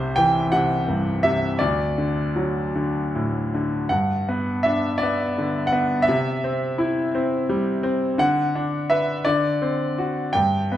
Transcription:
grand piano
Already playing: C2 C3 C5
0.16 E3 G5
0.52 C3 F#5
0.88 G2
1.23 C3 E5
1.59 D2 D5
1.98 D3
2.36 F#3
2.75 D3
3.15 A2
3.54 D3
3.89 G2 F#5
4.29 B3
4.63 D4 E5
4.98 D5
5.03 B3
5.38 D3
5.67 F#5
5.72 B3
6.02 E5
6.08 C3
6.44 C4
6.78 E4
7.15 C4
7.49 G3
7.83 C4
8.18 D3 F#5
8.55 D4
8.90 B4 E5
9.25 D3 D5
9.62 C4
9.98 F#4
10.33 G2 G5
10.72 B3

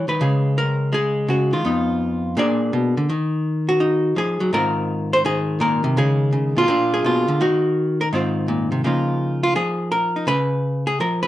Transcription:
hollow-body jazz guitar
Already playing: G3 E4
0.08 D#3 B4
0.21 C#3 G#3 G#4
0.58 A#4
0.93 G#3 G#4
1.28 C#3 F#4
1.53 D#3 F4
1.65 F2 B3 D#4
2.37 A#2 A#3 D4 G#4 D5
2.73 B2
2.97 D3
3.10 D#3
3.69 F#4
3.80 D#4
4.16 F3 G#4
4.40 F#3
4.53 G#2 D#3 C4 F4 A#4
5.13 C5
5.25 D#3 G#4
5.60 A#2 A#4
5.84 C3
5.97 C#3 G#3 G#4
6.33 C#3
6.57 B2 F4
6.68 A#2 A#3 D4
6.94 G#4
7.04 B2 F4
7.28 D3
7.41 D#3 D#4 F#4
8.01 A#4
8.13 G#2 D#3 C4 F4 C5
8.48 A#2
8.72 C3
8.84 C#3 F3 A#3 D#4 F4
9.43 F4
9.55 F3 G#4
9.92 A#4
10.16 D#4
10.27 C#3 B4
10.87 G#4
11.00 F3 A#4
11.23 B4

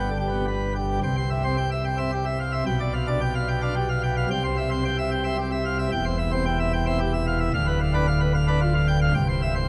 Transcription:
pipe organ
Already playing: G1 G2 G5
0.11 D3
0.20 G4
0.29 B3
0.48 B4
0.76 G4
1.03 C2 C3 G5
1.17 C5
1.30 E5
1.44 C4 C5
1.57 G5
1.71 E5
1.85 G5
1.98 C4 E5
2.12 G4
2.26 E5
2.40 F5
2.52 E5
2.66 B1 B2 G5
2.80 D5
2.94 F5
3.07 D4 D5
3.21 G5
3.35 F5
3.48 G5
3.62 D4 F5
3.76 G4
3.89 F5
4.03 G5
4.17 F5
4.30 C2 C3 G5
4.44 C5
4.57 E5
4.71 C4 C5
4.85 G5
4.98 E5
5.11 G5
5.24 C4 E5
5.38 G4
5.52 E5
5.65 F5
5.79 E5
5.92 E1 E2 G5
6.05 C5
6.19 E5
6.32 C4 C5
6.46 G5
6.60 E5
6.73 G5
6.87 C4 E5
7.00 G4
7.14 E5
7.27 F5
7.40 E5
7.54 D1 D2 F5
7.67 B4
7.80 F5
7.94 D4 B4
8.07 F5
8.20 B4
8.34 F5
8.48 D4 B4
8.61 F4
8.74 F5
8.88 G5
9.01 F5
9.14 C1 C2 G5
9.29 C5
9.42 E5
9.55 C5

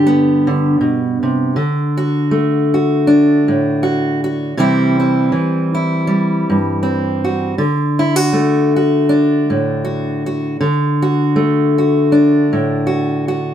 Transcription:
steel-string acoustic guitar
Already playing: G2 D3 D4 G4
0.07 B3
0.47 D3
0.81 B2
1.23 C3
1.56 D3
1.97 F#4
2.31 A3
2.74 F#4
3.07 D4
3.48 A2
3.83 F#4
4.24 F#4
4.57 C3 E3 G3 C4 E4
5.00 C4
5.32 E3
5.75 E4
6.07 G3
6.50 G2
6.83 C4
7.24 F#4
7.58 D3
7.99 E4
8.16 F#4
8.33 A3
8.76 F#4
9.09 D4
9.50 A2
9.85 F#4
10.26 F#4
10.61 D3
11.02 F#4
11.36 A3
11.78 F#4
12.12 D4
12.53 A2
12.87 F#4
13.28 F#4

